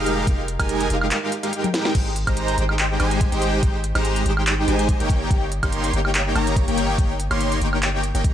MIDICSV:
0, 0, Header, 1, 4, 480
1, 0, Start_track
1, 0, Key_signature, -4, "major"
1, 0, Tempo, 419580
1, 311, Time_signature, 4, 2, 24, 8
1, 9538, End_track
2, 0, Start_track
2, 0, Title_t, "Analog polysynth"
2, 0, Program_c, 0, 90
2, 0, Note_on_c, 0, 56, 100
2, 0, Note_on_c, 0, 63, 91
2, 0, Note_on_c, 0, 67, 98
2, 0, Note_on_c, 0, 70, 90
2, 0, Note_on_c, 0, 77, 112
2, 284, Note_off_c, 0, 77, 0
2, 285, Note_off_c, 0, 56, 0
2, 285, Note_off_c, 0, 63, 0
2, 285, Note_off_c, 0, 67, 0
2, 285, Note_off_c, 0, 70, 0
2, 308, Note_on_c, 0, 63, 80
2, 308, Note_on_c, 0, 70, 76
2, 308, Note_on_c, 0, 77, 94
2, 309, Note_on_c, 0, 56, 84
2, 309, Note_on_c, 0, 67, 78
2, 470, Note_off_c, 0, 70, 0
2, 471, Note_off_c, 0, 56, 0
2, 471, Note_off_c, 0, 63, 0
2, 471, Note_off_c, 0, 67, 0
2, 471, Note_off_c, 0, 77, 0
2, 678, Note_on_c, 0, 56, 95
2, 678, Note_on_c, 0, 67, 89
2, 678, Note_on_c, 0, 70, 90
2, 678, Note_on_c, 0, 80, 108
2, 679, Note_on_c, 0, 63, 89
2, 1003, Note_off_c, 0, 56, 0
2, 1003, Note_off_c, 0, 67, 0
2, 1003, Note_off_c, 0, 70, 0
2, 1003, Note_off_c, 0, 80, 0
2, 1004, Note_off_c, 0, 63, 0
2, 1027, Note_on_c, 0, 56, 91
2, 1027, Note_on_c, 0, 63, 87
2, 1027, Note_on_c, 0, 67, 86
2, 1027, Note_on_c, 0, 70, 85
2, 1028, Note_on_c, 0, 77, 105
2, 1483, Note_off_c, 0, 56, 0
2, 1483, Note_off_c, 0, 63, 0
2, 1483, Note_off_c, 0, 67, 0
2, 1483, Note_off_c, 0, 70, 0
2, 1483, Note_off_c, 0, 77, 0
2, 1638, Note_on_c, 0, 56, 84
2, 1638, Note_on_c, 0, 63, 74
2, 1638, Note_on_c, 0, 67, 76
2, 1638, Note_on_c, 0, 70, 72
2, 1638, Note_on_c, 0, 77, 90
2, 1723, Note_off_c, 0, 56, 0
2, 1723, Note_off_c, 0, 63, 0
2, 1723, Note_off_c, 0, 67, 0
2, 1723, Note_off_c, 0, 70, 0
2, 1723, Note_off_c, 0, 77, 0
2, 1748, Note_on_c, 0, 56, 85
2, 1748, Note_on_c, 0, 67, 77
2, 1748, Note_on_c, 0, 70, 78
2, 1749, Note_on_c, 0, 63, 77
2, 1749, Note_on_c, 0, 79, 96
2, 2203, Note_off_c, 0, 56, 0
2, 2203, Note_off_c, 0, 67, 0
2, 2203, Note_off_c, 0, 70, 0
2, 2204, Note_off_c, 0, 63, 0
2, 2204, Note_off_c, 0, 79, 0
2, 2229, Note_on_c, 0, 56, 87
2, 2229, Note_on_c, 0, 63, 80
2, 2229, Note_on_c, 0, 67, 77
2, 2229, Note_on_c, 0, 72, 79
2, 2229, Note_on_c, 0, 79, 95
2, 2391, Note_off_c, 0, 56, 0
2, 2391, Note_off_c, 0, 63, 0
2, 2391, Note_off_c, 0, 67, 0
2, 2391, Note_off_c, 0, 72, 0
2, 2391, Note_off_c, 0, 79, 0
2, 2599, Note_on_c, 0, 56, 92
2, 2599, Note_on_c, 0, 63, 86
2, 2599, Note_on_c, 0, 67, 86
2, 2599, Note_on_c, 0, 72, 89
2, 2599, Note_on_c, 0, 82, 105
2, 2924, Note_off_c, 0, 56, 0
2, 2924, Note_off_c, 0, 63, 0
2, 2924, Note_off_c, 0, 67, 0
2, 2924, Note_off_c, 0, 72, 0
2, 2924, Note_off_c, 0, 82, 0
2, 2949, Note_on_c, 0, 56, 91
2, 2949, Note_on_c, 0, 63, 90
2, 2949, Note_on_c, 0, 72, 85
2, 2949, Note_on_c, 0, 79, 106
2, 2950, Note_on_c, 0, 67, 88
2, 3404, Note_off_c, 0, 56, 0
2, 3404, Note_off_c, 0, 63, 0
2, 3404, Note_off_c, 0, 67, 0
2, 3404, Note_off_c, 0, 72, 0
2, 3404, Note_off_c, 0, 79, 0
2, 3430, Note_on_c, 0, 56, 99
2, 3430, Note_on_c, 0, 63, 90
2, 3430, Note_on_c, 0, 67, 90
2, 3430, Note_on_c, 0, 72, 89
2, 3430, Note_on_c, 0, 80, 104
2, 3769, Note_off_c, 0, 56, 0
2, 3769, Note_off_c, 0, 63, 0
2, 3769, Note_off_c, 0, 67, 0
2, 3769, Note_off_c, 0, 72, 0
2, 3769, Note_off_c, 0, 80, 0
2, 3799, Note_on_c, 0, 67, 96
2, 3799, Note_on_c, 0, 79, 113
2, 3800, Note_on_c, 0, 56, 99
2, 3800, Note_on_c, 0, 63, 93
2, 3801, Note_on_c, 0, 72, 96
2, 4124, Note_off_c, 0, 56, 0
2, 4124, Note_off_c, 0, 63, 0
2, 4124, Note_off_c, 0, 67, 0
2, 4124, Note_off_c, 0, 72, 0
2, 4124, Note_off_c, 0, 79, 0
2, 4152, Note_on_c, 0, 56, 84
2, 4313, Note_off_c, 0, 56, 0
2, 4519, Note_on_c, 0, 63, 87
2, 4519, Note_on_c, 0, 67, 86
2, 4520, Note_on_c, 0, 56, 95
2, 4520, Note_on_c, 0, 72, 88
2, 4521, Note_on_c, 0, 82, 102
2, 4844, Note_off_c, 0, 56, 0
2, 4844, Note_off_c, 0, 63, 0
2, 4844, Note_off_c, 0, 67, 0
2, 4844, Note_off_c, 0, 72, 0
2, 4845, Note_off_c, 0, 82, 0
2, 4873, Note_on_c, 0, 56, 95
2, 4873, Note_on_c, 0, 72, 88
2, 4874, Note_on_c, 0, 63, 85
2, 4874, Note_on_c, 0, 67, 86
2, 4874, Note_on_c, 0, 79, 105
2, 5326, Note_off_c, 0, 56, 0
2, 5326, Note_off_c, 0, 63, 0
2, 5326, Note_off_c, 0, 67, 0
2, 5326, Note_off_c, 0, 72, 0
2, 5326, Note_off_c, 0, 79, 0
2, 5352, Note_on_c, 0, 56, 97
2, 5352, Note_on_c, 0, 63, 88
2, 5352, Note_on_c, 0, 67, 89
2, 5352, Note_on_c, 0, 72, 87
2, 5352, Note_on_c, 0, 80, 102
2, 5690, Note_off_c, 0, 56, 0
2, 5690, Note_off_c, 0, 63, 0
2, 5690, Note_off_c, 0, 67, 0
2, 5690, Note_off_c, 0, 72, 0
2, 5690, Note_off_c, 0, 80, 0
2, 5719, Note_on_c, 0, 63, 94
2, 5720, Note_on_c, 0, 58, 101
2, 5720, Note_on_c, 0, 67, 95
2, 5720, Note_on_c, 0, 73, 95
2, 5720, Note_on_c, 0, 79, 113
2, 6044, Note_off_c, 0, 58, 0
2, 6044, Note_off_c, 0, 63, 0
2, 6044, Note_off_c, 0, 67, 0
2, 6044, Note_off_c, 0, 73, 0
2, 6044, Note_off_c, 0, 79, 0
2, 6068, Note_on_c, 0, 67, 78
2, 6069, Note_on_c, 0, 58, 85
2, 6069, Note_on_c, 0, 63, 78
2, 6069, Note_on_c, 0, 73, 78
2, 6069, Note_on_c, 0, 79, 94
2, 6231, Note_off_c, 0, 58, 0
2, 6231, Note_off_c, 0, 63, 0
2, 6231, Note_off_c, 0, 67, 0
2, 6231, Note_off_c, 0, 73, 0
2, 6231, Note_off_c, 0, 79, 0
2, 6439, Note_on_c, 0, 58, 99
2, 6439, Note_on_c, 0, 63, 87
2, 6439, Note_on_c, 0, 67, 85
2, 6439, Note_on_c, 0, 73, 89
2, 6439, Note_on_c, 0, 84, 108
2, 6764, Note_off_c, 0, 58, 0
2, 6764, Note_off_c, 0, 63, 0
2, 6764, Note_off_c, 0, 67, 0
2, 6764, Note_off_c, 0, 73, 0
2, 6764, Note_off_c, 0, 84, 0
2, 6789, Note_on_c, 0, 63, 88
2, 6790, Note_on_c, 0, 58, 96
2, 6790, Note_on_c, 0, 67, 87
2, 6790, Note_on_c, 0, 73, 88
2, 6790, Note_on_c, 0, 79, 106
2, 7244, Note_off_c, 0, 58, 0
2, 7244, Note_off_c, 0, 63, 0
2, 7244, Note_off_c, 0, 67, 0
2, 7244, Note_off_c, 0, 73, 0
2, 7244, Note_off_c, 0, 79, 0
2, 7269, Note_on_c, 0, 63, 88
2, 7269, Note_on_c, 0, 73, 89
2, 7270, Note_on_c, 0, 58, 97
2, 7270, Note_on_c, 0, 67, 87
2, 7270, Note_on_c, 0, 82, 104
2, 7609, Note_off_c, 0, 58, 0
2, 7609, Note_off_c, 0, 63, 0
2, 7609, Note_off_c, 0, 67, 0
2, 7609, Note_off_c, 0, 73, 0
2, 7609, Note_off_c, 0, 82, 0
2, 7638, Note_on_c, 0, 58, 102
2, 7638, Note_on_c, 0, 63, 93
2, 7639, Note_on_c, 0, 67, 93
2, 7640, Note_on_c, 0, 73, 96
2, 7640, Note_on_c, 0, 79, 112
2, 7963, Note_off_c, 0, 63, 0
2, 7964, Note_off_c, 0, 58, 0
2, 7964, Note_off_c, 0, 67, 0
2, 7964, Note_off_c, 0, 73, 0
2, 7964, Note_off_c, 0, 79, 0
2, 7988, Note_on_c, 0, 79, 96
2, 7989, Note_on_c, 0, 58, 82
2, 7989, Note_on_c, 0, 63, 78
2, 7989, Note_on_c, 0, 67, 80
2, 8151, Note_off_c, 0, 58, 0
2, 8151, Note_off_c, 0, 63, 0
2, 8151, Note_off_c, 0, 67, 0
2, 8151, Note_off_c, 0, 79, 0
2, 8359, Note_on_c, 0, 58, 99
2, 8359, Note_on_c, 0, 63, 85
2, 8359, Note_on_c, 0, 67, 90
2, 8359, Note_on_c, 0, 73, 86
2, 8359, Note_on_c, 0, 84, 105
2, 8684, Note_off_c, 0, 58, 0
2, 8684, Note_off_c, 0, 63, 0
2, 8684, Note_off_c, 0, 67, 0
2, 8684, Note_off_c, 0, 73, 0
2, 8684, Note_off_c, 0, 84, 0
2, 8708, Note_on_c, 0, 58, 96
2, 8708, Note_on_c, 0, 63, 90
2, 8708, Note_on_c, 0, 67, 86
2, 8708, Note_on_c, 0, 73, 88
2, 8709, Note_on_c, 0, 79, 106
2, 9163, Note_off_c, 0, 58, 0
2, 9163, Note_off_c, 0, 63, 0
2, 9163, Note_off_c, 0, 67, 0
2, 9163, Note_off_c, 0, 73, 0
2, 9164, Note_off_c, 0, 79, 0
2, 9318, Note_on_c, 0, 58, 81
2, 9318, Note_on_c, 0, 63, 74
2, 9318, Note_on_c, 0, 73, 76
2, 9319, Note_on_c, 0, 67, 74
2, 9319, Note_on_c, 0, 79, 89
2, 9403, Note_off_c, 0, 58, 0
2, 9403, Note_off_c, 0, 63, 0
2, 9403, Note_off_c, 0, 73, 0
2, 9404, Note_off_c, 0, 67, 0
2, 9404, Note_off_c, 0, 79, 0
2, 9429, Note_on_c, 0, 58, 85
2, 9429, Note_on_c, 0, 63, 77
2, 9429, Note_on_c, 0, 67, 75
2, 9429, Note_on_c, 0, 73, 76
2, 9429, Note_on_c, 0, 82, 91
2, 9538, Note_off_c, 0, 58, 0
2, 9538, Note_off_c, 0, 63, 0
2, 9538, Note_off_c, 0, 67, 0
2, 9538, Note_off_c, 0, 73, 0
2, 9538, Note_off_c, 0, 82, 0
2, 9538, End_track
3, 0, Start_track
3, 0, Title_t, "808-style bass"
3, 0, Program_c, 1, 38
3, 0, Note_on_c, 1, 29, 100
3, 290, Note_off_c, 1, 29, 0
3, 310, Note_on_c, 1, 29, 98
3, 655, Note_off_c, 1, 29, 0
3, 681, Note_on_c, 1, 29, 99
3, 1009, Note_off_c, 1, 29, 0
3, 1032, Note_on_c, 1, 29, 100
3, 1272, Note_off_c, 1, 29, 0
3, 2230, Note_on_c, 1, 32, 97
3, 2575, Note_off_c, 1, 32, 0
3, 2602, Note_on_c, 1, 32, 98
3, 2929, Note_off_c, 1, 32, 0
3, 2951, Note_on_c, 1, 32, 97
3, 3409, Note_off_c, 1, 32, 0
3, 3431, Note_on_c, 1, 32, 102
3, 3775, Note_off_c, 1, 32, 0
3, 3799, Note_on_c, 1, 32, 102
3, 4128, Note_off_c, 1, 32, 0
3, 4519, Note_on_c, 1, 32, 97
3, 4848, Note_off_c, 1, 32, 0
3, 4868, Note_on_c, 1, 32, 100
3, 5328, Note_off_c, 1, 32, 0
3, 5351, Note_on_c, 1, 32, 98
3, 5695, Note_off_c, 1, 32, 0
3, 5720, Note_on_c, 1, 31, 101
3, 6048, Note_off_c, 1, 31, 0
3, 6070, Note_on_c, 1, 31, 98
3, 6415, Note_off_c, 1, 31, 0
3, 6440, Note_on_c, 1, 31, 99
3, 6768, Note_off_c, 1, 31, 0
3, 6789, Note_on_c, 1, 31, 97
3, 7248, Note_off_c, 1, 31, 0
3, 7268, Note_on_c, 1, 31, 99
3, 7614, Note_off_c, 1, 31, 0
3, 7639, Note_on_c, 1, 31, 100
3, 7968, Note_off_c, 1, 31, 0
3, 7990, Note_on_c, 1, 31, 97
3, 8335, Note_off_c, 1, 31, 0
3, 8358, Note_on_c, 1, 31, 99
3, 8688, Note_off_c, 1, 31, 0
3, 8707, Note_on_c, 1, 31, 95
3, 9293, Note_off_c, 1, 31, 0
3, 9319, Note_on_c, 1, 31, 92
3, 9408, Note_off_c, 1, 31, 0
3, 9538, End_track
4, 0, Start_track
4, 0, Title_t, "Drums"
4, 72, Note_on_c, 9, 42, 69
4, 186, Note_off_c, 9, 42, 0
4, 311, Note_on_c, 9, 36, 116
4, 312, Note_on_c, 9, 42, 82
4, 425, Note_off_c, 9, 36, 0
4, 426, Note_off_c, 9, 42, 0
4, 551, Note_on_c, 9, 42, 70
4, 666, Note_off_c, 9, 42, 0
4, 681, Note_on_c, 9, 36, 58
4, 681, Note_on_c, 9, 42, 69
4, 681, Note_on_c, 9, 76, 80
4, 791, Note_off_c, 9, 42, 0
4, 791, Note_on_c, 9, 42, 81
4, 795, Note_off_c, 9, 36, 0
4, 796, Note_off_c, 9, 76, 0
4, 905, Note_off_c, 9, 42, 0
4, 921, Note_on_c, 9, 42, 64
4, 1031, Note_off_c, 9, 42, 0
4, 1031, Note_on_c, 9, 42, 74
4, 1145, Note_off_c, 9, 42, 0
4, 1161, Note_on_c, 9, 76, 65
4, 1270, Note_on_c, 9, 39, 113
4, 1270, Note_on_c, 9, 42, 85
4, 1275, Note_off_c, 9, 76, 0
4, 1384, Note_off_c, 9, 39, 0
4, 1384, Note_off_c, 9, 42, 0
4, 1510, Note_on_c, 9, 42, 71
4, 1624, Note_off_c, 9, 42, 0
4, 1640, Note_on_c, 9, 42, 71
4, 1749, Note_off_c, 9, 42, 0
4, 1749, Note_on_c, 9, 42, 80
4, 1863, Note_off_c, 9, 42, 0
4, 1879, Note_on_c, 9, 42, 62
4, 1879, Note_on_c, 9, 48, 49
4, 1989, Note_off_c, 9, 42, 0
4, 1989, Note_on_c, 9, 38, 80
4, 1989, Note_on_c, 9, 42, 70
4, 1994, Note_off_c, 9, 48, 0
4, 2104, Note_off_c, 9, 38, 0
4, 2104, Note_off_c, 9, 42, 0
4, 2119, Note_on_c, 9, 38, 83
4, 2230, Note_on_c, 9, 42, 83
4, 2230, Note_on_c, 9, 49, 104
4, 2231, Note_on_c, 9, 36, 121
4, 2234, Note_off_c, 9, 38, 0
4, 2345, Note_off_c, 9, 42, 0
4, 2345, Note_off_c, 9, 49, 0
4, 2346, Note_off_c, 9, 36, 0
4, 2471, Note_on_c, 9, 42, 71
4, 2585, Note_off_c, 9, 42, 0
4, 2600, Note_on_c, 9, 42, 67
4, 2600, Note_on_c, 9, 76, 78
4, 2601, Note_on_c, 9, 36, 62
4, 2709, Note_off_c, 9, 42, 0
4, 2709, Note_on_c, 9, 42, 84
4, 2714, Note_off_c, 9, 76, 0
4, 2716, Note_off_c, 9, 36, 0
4, 2824, Note_off_c, 9, 42, 0
4, 2840, Note_on_c, 9, 42, 65
4, 2949, Note_off_c, 9, 42, 0
4, 2949, Note_on_c, 9, 42, 71
4, 3063, Note_off_c, 9, 42, 0
4, 3078, Note_on_c, 9, 76, 62
4, 3190, Note_on_c, 9, 39, 117
4, 3190, Note_on_c, 9, 42, 81
4, 3193, Note_off_c, 9, 76, 0
4, 3304, Note_off_c, 9, 39, 0
4, 3304, Note_off_c, 9, 42, 0
4, 3430, Note_on_c, 9, 42, 70
4, 3430, Note_on_c, 9, 76, 62
4, 3544, Note_off_c, 9, 42, 0
4, 3544, Note_off_c, 9, 76, 0
4, 3561, Note_on_c, 9, 42, 71
4, 3671, Note_off_c, 9, 42, 0
4, 3671, Note_on_c, 9, 36, 108
4, 3671, Note_on_c, 9, 42, 81
4, 3785, Note_off_c, 9, 42, 0
4, 3786, Note_off_c, 9, 36, 0
4, 3801, Note_on_c, 9, 42, 61
4, 3910, Note_off_c, 9, 42, 0
4, 3910, Note_on_c, 9, 42, 71
4, 4024, Note_off_c, 9, 42, 0
4, 4151, Note_on_c, 9, 42, 81
4, 4152, Note_on_c, 9, 36, 124
4, 4265, Note_off_c, 9, 42, 0
4, 4266, Note_off_c, 9, 36, 0
4, 4391, Note_on_c, 9, 42, 68
4, 4506, Note_off_c, 9, 42, 0
4, 4522, Note_on_c, 9, 42, 68
4, 4522, Note_on_c, 9, 76, 76
4, 4630, Note_off_c, 9, 42, 0
4, 4630, Note_on_c, 9, 42, 79
4, 4636, Note_off_c, 9, 76, 0
4, 4745, Note_off_c, 9, 42, 0
4, 4761, Note_on_c, 9, 42, 64
4, 4871, Note_off_c, 9, 42, 0
4, 4871, Note_on_c, 9, 42, 70
4, 4986, Note_off_c, 9, 42, 0
4, 5000, Note_on_c, 9, 76, 60
4, 5111, Note_on_c, 9, 39, 122
4, 5111, Note_on_c, 9, 42, 78
4, 5115, Note_off_c, 9, 76, 0
4, 5225, Note_off_c, 9, 39, 0
4, 5225, Note_off_c, 9, 42, 0
4, 5352, Note_on_c, 9, 42, 66
4, 5467, Note_off_c, 9, 42, 0
4, 5481, Note_on_c, 9, 42, 70
4, 5591, Note_on_c, 9, 36, 111
4, 5592, Note_off_c, 9, 42, 0
4, 5592, Note_on_c, 9, 42, 78
4, 5705, Note_off_c, 9, 36, 0
4, 5706, Note_off_c, 9, 42, 0
4, 5723, Note_on_c, 9, 42, 59
4, 5830, Note_on_c, 9, 36, 110
4, 5833, Note_off_c, 9, 42, 0
4, 5833, Note_on_c, 9, 42, 69
4, 5945, Note_off_c, 9, 36, 0
4, 5948, Note_off_c, 9, 42, 0
4, 6070, Note_on_c, 9, 36, 125
4, 6072, Note_on_c, 9, 42, 78
4, 6185, Note_off_c, 9, 36, 0
4, 6187, Note_off_c, 9, 42, 0
4, 6311, Note_on_c, 9, 42, 65
4, 6426, Note_off_c, 9, 42, 0
4, 6440, Note_on_c, 9, 36, 64
4, 6440, Note_on_c, 9, 42, 61
4, 6440, Note_on_c, 9, 76, 73
4, 6549, Note_off_c, 9, 42, 0
4, 6549, Note_on_c, 9, 42, 80
4, 6554, Note_off_c, 9, 36, 0
4, 6554, Note_off_c, 9, 76, 0
4, 6663, Note_off_c, 9, 42, 0
4, 6679, Note_on_c, 9, 42, 63
4, 6790, Note_off_c, 9, 42, 0
4, 6790, Note_on_c, 9, 42, 67
4, 6904, Note_off_c, 9, 42, 0
4, 6920, Note_on_c, 9, 76, 60
4, 7031, Note_on_c, 9, 39, 123
4, 7031, Note_on_c, 9, 42, 77
4, 7035, Note_off_c, 9, 76, 0
4, 7146, Note_off_c, 9, 39, 0
4, 7146, Note_off_c, 9, 42, 0
4, 7271, Note_on_c, 9, 42, 64
4, 7271, Note_on_c, 9, 76, 61
4, 7385, Note_off_c, 9, 42, 0
4, 7385, Note_off_c, 9, 76, 0
4, 7402, Note_on_c, 9, 42, 66
4, 7509, Note_on_c, 9, 36, 115
4, 7511, Note_off_c, 9, 42, 0
4, 7511, Note_on_c, 9, 42, 75
4, 7624, Note_off_c, 9, 36, 0
4, 7626, Note_off_c, 9, 42, 0
4, 7641, Note_on_c, 9, 42, 57
4, 7751, Note_off_c, 9, 42, 0
4, 7751, Note_on_c, 9, 42, 68
4, 7866, Note_off_c, 9, 42, 0
4, 7989, Note_on_c, 9, 36, 121
4, 7992, Note_on_c, 9, 42, 76
4, 8104, Note_off_c, 9, 36, 0
4, 8107, Note_off_c, 9, 42, 0
4, 8232, Note_on_c, 9, 42, 67
4, 8347, Note_off_c, 9, 42, 0
4, 8362, Note_on_c, 9, 42, 63
4, 8362, Note_on_c, 9, 76, 78
4, 8472, Note_off_c, 9, 42, 0
4, 8472, Note_on_c, 9, 42, 73
4, 8476, Note_off_c, 9, 76, 0
4, 8586, Note_off_c, 9, 42, 0
4, 8602, Note_on_c, 9, 42, 58
4, 8712, Note_off_c, 9, 42, 0
4, 8712, Note_on_c, 9, 42, 65
4, 8827, Note_off_c, 9, 42, 0
4, 8842, Note_on_c, 9, 76, 60
4, 8952, Note_on_c, 9, 39, 119
4, 8952, Note_on_c, 9, 42, 75
4, 8957, Note_off_c, 9, 76, 0
4, 9066, Note_off_c, 9, 39, 0
4, 9066, Note_off_c, 9, 42, 0
4, 9192, Note_on_c, 9, 42, 61
4, 9306, Note_off_c, 9, 42, 0
4, 9322, Note_on_c, 9, 42, 62
4, 9431, Note_on_c, 9, 36, 114
4, 9432, Note_off_c, 9, 42, 0
4, 9432, Note_on_c, 9, 42, 75
4, 9538, Note_off_c, 9, 36, 0
4, 9538, Note_off_c, 9, 42, 0
4, 9538, End_track
0, 0, End_of_file